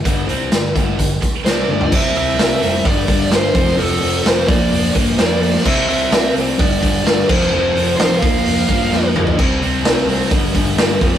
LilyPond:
<<
  \new Staff \with { instrumentName = "Lead electric guitar" } { \time 4/4 \key g \dorian \tempo 4 = 129 r2. d''4 | e''8 e''4. d''4 c''4 | a'4 c''8 d''4 r8 d''4 | e''8 e''4 r8 d''4. c''8~ |
c''4 c''8 f''2 r8 | r1 | }
  \new Staff \with { instrumentName = "Distorted electric guitar" } { \clef bass \time 4/4 \key g \dorian <g, d g>8 <c g c'>8 <g, d>8 <g, d g>8 <g, d>8 r8 <c g c'>8 <g, d g>8 | <c g c'>8 <c g c'>8 <c g c'>8 <c g c'>8 <g, d g>8 <g, d g>8 <g, d g>8 <f, c f>8 | <f, c f>8 <f, c f>8 <f, c f>8 <bes, f bes>8 <bes, f bes>8 <bes, f bes>8 <bes, f bes>8 <bes, f bes>8 | <c g c'>8 <c g c'>8 <c g c'>8 <c g c'>8 <g, d g>8 <g, d g>8 <g, d g>8 <f, c f>8 |
<f, c f>8 <f, c f>8 <f, c f>8 <bes, f bes>8 <bes, f bes>8 <bes, f bes>8 <bes, f bes>8 <bes, f bes>8 | <c g c'>8 <c g c'>8 <c g c'>8 <c g c'>8 <g, d g>8 <g, d g>8 <g, d g>8 <f, c f>8 | }
  \new Staff \with { instrumentName = "Distorted electric guitar" } { \clef bass \time 4/4 \key g \dorian r1 | <c g c'>2 <g, d g>4. <f, c f>8~ | <f, c f>4. <bes, f bes>2~ <bes, f bes>8 | <c g c'>2 <g, d g>4. <f, c f>8~ |
<f, c f>4. <bes, f bes>2~ <bes, f bes>8 | <c g c'>2 <g, d g>4. <f, c f>8 | }
  \new Staff \with { instrumentName = "Overdriven electric guitar" } { \clef bass \time 4/4 \key g \dorian <g, d g>8 <c g c'>8 <g, d>8 <g, d g>8 <g, d>8 r8 <c g c'>8 <g, d g>8 | <c g c'>8 <c g c'>8 <c g c'>8 <c g c'>8 <g, d g>8 <g, d g>8 <g, d g>8 <f, c f>8 | <f, c f>8 <f, c f>8 <f, c f>8 <bes, f bes>8 <bes, f bes>8 <bes, f bes>8 <bes, f bes>8 <bes, f bes>8 | <c g c'>8 <c g c'>8 <c g c'>8 <c g c'>8 <g, d g>8 <g, d g>8 <g, d g>8 <f, c f>8 |
<f, c f>8 <f, c f>8 <f, c f>8 <bes, f bes>8 <bes, f bes>8 <bes, f bes>8 <bes, f bes>8 <bes, f bes>8 | <c g c'>8 <c g c'>8 <c g c'>8 <c g c'>8 <g, d g>8 <g, d g>8 <g, d g>8 <f, c f>8 | }
  \new Staff \with { instrumentName = "Fingered electric bass" } { \clef bass \time 4/4 \key g \dorian g,,8 c,8 g,,8 g,,8 g,,8 r8 c,8 g,,8 | c,8 c,8 c,8 f,,8 g,,8 g,8 g,,8 r8 | f,,8 f,,8 f,,8 bes,,8 f,,8 g,8 f,4 | c,8 c,8 c,8 c,8 g,,8 g,8 g,,8 f,,8 |
f,,8 f,,8 a,,8 bes,,8 f,,8 g,8 f,4 | c,8 c,8 c,8 c,8 g,,8 g,8 g,,8 f,,8 | }
  \new DrumStaff \with { instrumentName = "Drums" } \drummode { \time 4/4 <hh bd>8 hh8 <hh sn>8 <hh bd>8 <hh bd>8 <hh bd>8 <hh sn>8 tommh16 tomfh16 | <cymc bd>8 hho8 <hho sn>8 hho8 <hho bd>8 <hho bd>8 <hho sn>8 <hho bd>16 sn16 | hho8 hho8 <hho sn>8 <hho bd>8 hho8 <hho bd>8 <hho sn>8 hho16 sn16 | <cymc bd>8 hho8 <hho sn>8 hho8 <hho bd>8 <hho bd>8 <hho sn>8 <cymc bd>16 sn16 |
r8 hho8 <hho sn>8 <hho bd>8 hho8 <hho bd>8 sn8 toml16 tomfh16 | <cymc bd>8 hho8 <hho sn>8 hho8 <hho bd>8 <hho bd>8 <hho sn>8 <hho bd>16 sn16 | }
>>